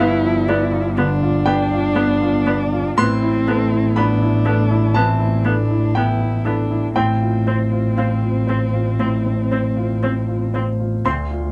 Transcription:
Already playing: G1 G2 F3 E4 D5 G5
0.00 B3 F5
0.23 F3
0.48 B3 D5
0.73 F4
0.95 D3 B3 D4
1.22 F4
1.46 B3 D5 G5
1.72 F4
1.95 B3
2.21 F4
2.46 B3 D5
2.72 F4
2.97 A1 A2 B3 C4 C6
3.22 E4
3.47 B3 A4
3.72 E4
3.96 B3 D4 B5
4.21 E4
4.45 B3 A4
4.71 E4
4.94 E3 B3 C4 A5
5.20 E4
5.45 B3 D4 A4
5.71 E4
5.95 B3 E4 G5
6.21 E4
6.45 B3 D4 A4
6.71 E4
6.95 A1 A2 C4 G5
7.21 F4
7.47 C4 C5
7.72 F4
7.97 C4 F5
8.22 F4
8.47 C4 C5
8.73 F4
8.99 A2 C4
9.26 C4
9.51 C4 C5
9.76 F4
10.03 C4
10.28 F4
10.54 C4 C5
10.80 F4
11.05 D2 C4 C6
11.31 F4

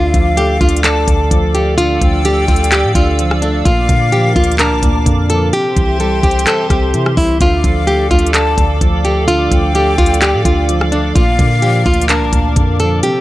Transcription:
Already playing: D2 D3 F4 A4 D5 F5 D6
0.14 D2 F3, kick, closed hi-hat
0.37 A3 G4, closed hi-hat
0.61 D2 D4 F4, kick, closed hi-hat
0.69 closed hi-hat
0.77 closed hi-hat
0.84 A4 D5 A5, clap, closed hi-hat
1.08 D2 D3, kick, closed hi-hat
1.31 D2 F3, kick, closed hi-hat
1.55 A3 G4, closed hi-hat
1.78 D3 F4 E6, closed hi-hat
2.01 D2 F3 G5, kick, closed hi-hat
2.25 A3 G4, closed hi-hat
2.48 D2 D4 F4, kick, closed hi-hat
2.56 closed hi-hat
2.64 closed hi-hat
2.72 G4 D5, clap, closed hi-hat
2.84 A2
2.95 D2 D3 F4, kick, closed hi-hat
3.19 F3, closed hi-hat
3.31 cross-stick
3.42 A3 D4, closed hi-hat
3.65 A#1 A#2 F4 A#4 F5 D6, kick, closed hi-hat
3.89 A#2 D3, kick, closed hi-hat
4.12 F3 G4, closed hi-hat
4.36 D2 A#3 F4, kick, closed hi-hat
4.44 closed hi-hat
4.52 closed hi-hat
4.59 D4 A#4 A5, clap, closed hi-hat
4.72 C2
4.83 D2 A#2, kick, closed hi-hat
5.06 F2 D3, kick, closed hi-hat
5.30 F3 A4, closed hi-hat
5.53 C3 G4 C5 E5 C6, closed hi-hat
5.76 C2 E3 G5, kick, closed hi-hat
6.00 G3 A4, closed hi-hat
6.23 C2 C4 G4, kick, closed hi-hat
6.31 closed hi-hat
6.39 closed hi-hat
6.47 A4 C5, clap, closed hi-hat
6.70 C2 C3 G4, kick, cross-stick, closed hi-hat
6.94 C3 E3, closed hi-hat
7.06 cross-stick
7.17 C2 G3 E4, kick, open hi-hat
7.41 D2 D3 F4 A4 D5 F5 D6, kick, closed hi-hat
7.63 D2 F3, kick, closed hi-hat
7.87 A3 G4, closed hi-hat
8.11 D2 D4 F4, kick, closed hi-hat
8.19 closed hi-hat
8.27 closed hi-hat
8.34 A4 D5 A5, clap, closed hi-hat
8.58 D2 D3, kick, closed hi-hat
8.81 D2 F3, kick, closed hi-hat
9.05 A3 G4, closed hi-hat
9.28 D3 F4, closed hi-hat
9.51 D2 F3 G5, kick, closed hi-hat
9.75 A3 G4, closed hi-hat
9.98 D2 D4 F4, kick, closed hi-hat
10.06 closed hi-hat
10.14 closed hi-hat
10.22 G4 D5, clap, closed hi-hat
10.34 A2
10.45 D2 D3 F4, kick, closed hi-hat
10.69 F3, closed hi-hat
10.81 cross-stick
10.92 A3 D4, closed hi-hat
11.15 A#1 A#2 F4 A#4 F5, kick, closed hi-hat
11.39 A#2 D3, kick, closed hi-hat
11.62 F3 G4, closed hi-hat
11.86 D2 A#3 F4, kick, closed hi-hat
11.94 closed hi-hat
12.02 closed hi-hat
12.09 D4 A#4 A5, clap, closed hi-hat
12.22 C2
12.33 D2 A#2, kick, closed hi-hat
12.56 F2 D3, kick, closed hi-hat
12.79 F3 A4, closed hi-hat
13.03 C3 G4 C5 E5 G5 E6, closed hi-hat

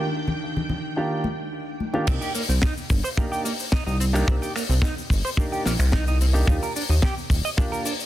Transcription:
Already playing: D#3 D4 G5
0.28 low conga
0.57 low conga
0.69 low conga
0.96 D#3 A#3 D4 F4 G4
1.24 high bongo, high conga
1.80 high conga
1.93 D#3 A#3 D4 F4 G4, high bongo
2.07 C2 C4, kick, crash, shaker
2.21 G4, open hi-hat, shaker
2.35 A#3, open hi-hat, shaker
2.49 C2 C4, shaker
2.62 D#4, kick, snare, shaker
2.77 shaker
2.90 G1, kick, open hi-hat, shaker
3.04 C5, shaker
3.17 A#3 D4 D#4 G4, kick, shaker
3.32 G4, shaker
3.45 A#3, open hi-hat, shaker
3.60 shaker
3.72 D#4, kick, snare, shaker
3.86 C2 D#4, shaker
4.00 C4, open hi-hat, shaker
4.13 A#3 D4 D#4 G4, finger snap, shaker
4.27 C2 A#3 C4 D4 G4, kick, shaker
4.42 G4, open hi-hat, shaker
4.56 A#3, finger snap, open hi-hat, shaker
4.69 C2 C4, shaker
4.82 D#4, kick, snare, shaker
4.98 shaker
5.10 G1, kick, open hi-hat, shaker
5.25 C5, shaker
5.37 A#3 D4 D#4 G4, kick, shaker
5.52 G4, shaker
5.65 A#1 A#3, snare, open hi-hat, shaker
5.79 C2, finger snap, shaker
5.92 D#4, kick, snare, shaker
6.07 D#4, shaker
6.21 C4, open hi-hat, shaker
6.33 A#3 D4 D#4 G4, shaker
6.46 D#2 A#3 D4 D#4 F4 G4, kick, shaker
6.62 A#4, open hi-hat, shaker
6.76 D4, open hi-hat, shaker
6.89 D#2 D#4, shaker
7.02 G4, kick, snare, shaker
7.18 shaker
7.30 D#1, kick, open hi-hat, shaker
7.45 D#5, shaker
7.57 A#3 D4 F4 G4, kick, shaker
7.72 A#4, shaker
7.85 D4, open hi-hat, shaker
8.00 shaker

